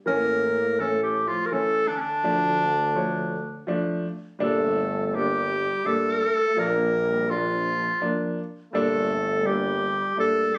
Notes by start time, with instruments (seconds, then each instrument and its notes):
0.06 tuba A2, upright piano E3 C#4, trombone A#3, clarinet A#4
0.78 upright piano E3 A3 C#4, trombone A3, clarinet A4
0.85 trombone A#3
0.94 trombone A3
1.03 clarinet G4
1.27 trombone F3, clarinet F4
1.46 clarinet A#4
1.51 upright piano E3 A3 C#4, trombone A3, clarinet A4
1.86 trombone D3, clarinet D4
1.97 trombone D3, clarinet C#4 D4
2.23 tuba D2, upright piano F3 A3 D4
2.94 upright piano F3 A3 C#5
3.67 upright piano F3 A3 D4
4.39 tuba G1, upright piano A#2 G3 D4, trombone A3
4.43 clarinet A4
5.06 clarinet A4
5.13 trombone G3, upright piano G3 A#3 D4, clarinet G4
5.84 upright piano A#2 G3 D4, trombone A3, clarinet A4
6.55 tuba A#1, upright piano F3 A#3 D4, trombone A#3, clarinet A#4
7.09 trombone G3
7.27 trombone F3, upright piano F3 A#3 D4, clarinet F4
8.01 upright piano F3 A#3 D4
8.72 tuba G1, upright piano A#2 G3 D4, trombone A3, clarinet A4
9.43 trombone G3, upright piano G3 A#3 D4, clarinet G4
10.16 upright piano A#2 G3 D4, trombone A3, clarinet A4
10.50 trombone G3